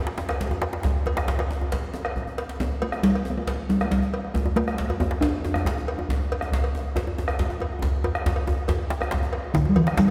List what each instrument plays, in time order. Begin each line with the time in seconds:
0.07 djembe slap
0.18 djembe slap, djembe tone
0.29 bombo rim, cowbell, djembe slap, djembe bass
0.40 bombo low, djembe slap
0.51 djembe tone
0.62 cowbell, djembe slap
0.73 bombo rim, djembe slap
0.83 bombo rim, bombo low, djembe slap, djembe tone, djembe bass
0.96 djembe slap
1.06 cowbell, djembe tone
1.17 bombo rim, djembe slap, djembe tone
1.28 bombo rim, bombo low, djembe slap
1.39 bombo rim, cowbell, djembe slap
1.51 djembe tone, djembe bass
1.61 djembe tone
1.72 bombo rim, bombo low, cowbell, djembe slap
1.83 djembe slap
1.94 bombo rim, djembe slap, djembe tone
2.05 bombo rim, cowbell
2.16 bombo low, djembe bass
2.27 djembe bass
2.38 cowbell, djembe slap
2.49 djembe slap
2.60 talking drum B3, bombo low, djembe slap, djembe tone, djembe bass
2.82 talking drum A3, bombo rim, cowbell
2.92 bombo rim, djembe tone
3.03 talking drum G3, bombo low, djembe slap
3.15 cowbell
3.25 djembe tone
3.30 talking drum B3
3.37 talking drum A3
3.47 bombo rim, bombo low, cowbell, djembe slap
3.69 talking drum G3, djembe tone
3.80 bombo rim, cowbell, djembe bass
3.85 talking drum A3
3.91 talking drum G3, bombo low, djembe slap
4.02 djembe tone
4.14 cowbell
4.24 bombo rim, djembe slap
4.34 talking drum A3, bombo low, djembe slap, djembe tone, djembe bass
4.45 djembe tone
4.56 talking drum A3, bombo rim, cowbell, djembe slap
4.68 bombo rim, djembe tone
4.78 bombo low, djembe slap
4.90 cowbell, djembe tone
5.00 talking drum B3, djembe tone, djembe bass
5.11 djembe slap
5.21 talking drum D4, bombo rim, bombo low, cowbell, djembe slap
5.44 djembe tone
5.54 bombo rim, djembe tone, djembe bass
5.65 bombo low, djembe slap
5.78 djembe tone
5.88 cowbell
5.98 bombo rim, djembe slap, djembe tone
6.09 bombo low, djembe slap, djembe tone, djembe bass
6.30 bombo rim, cowbell
6.41 bombo rim, djembe tone
6.52 bombo low, djembe slap
6.64 cowbell
6.75 djembe tone, djembe bass
6.96 bombo rim, bombo low, cowbell, djembe slap, djembe tone
7.07 djembe tone
7.18 djembe tone
7.28 bombo rim, cowbell, djembe bass
7.39 bombo low, djembe slap, djembe tone
7.50 djembe tone
7.60 cowbell, djembe tone
7.72 bombo rim, djembe slap
7.82 bombo low, djembe slap, djembe tone, djembe bass
8.04 cowbell, djembe slap, djembe tone
8.15 bombo rim, djembe tone
8.26 bombo low, djembe slap, djembe tone
8.36 bombo rim, cowbell
8.47 djembe tone, djembe bass
8.68 bombo low, cowbell, djembe slap, djembe tone
8.80 djembe slap
8.90 djembe slap, djembe tone
9.01 bombo rim, cowbell, djembe bass
9.11 bombo rim, bombo low, djembe slap
9.23 djembe tone
9.33 bombo rim, cowbell
9.45 bombo rim, djembe slap
9.54 talking drum D3, bombo rim, bombo low, djembe slap, djembe bass, shekere
9.65 djembe tone
9.69 talking drum G3
9.76 talking drum E3, bombo rim, cowbell, djembe tone, shekere
9.87 bombo rim, djembe slap, djembe tone
9.97 talking drum G3, bombo rim, bombo low, djembe slap, djembe bass, shekere